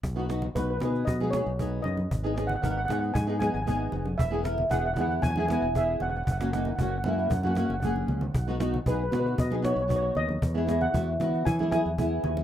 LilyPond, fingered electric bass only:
\new Staff \with { instrumentName = "Fingered electric bass" } { \clef bass \time 4/4 \key b \major \tempo 4 = 116 b,,4 b,,8 b,8 b,8. b,,8. fis,8 | gis,,4 gis,,8 gis,8 gis,8. gis,,8. eis,,8 | e,,4 e,,8 e,8 e,8. e,,8. e,,8 | fis,,4 fis,,8 fis,8 fis,8. fis,,8. cis,8 |
b,,4 b,,8 b,8 b,8. b,,8. dis,8 | e,4 e,8 e8 e8. e,8. dis,8 | }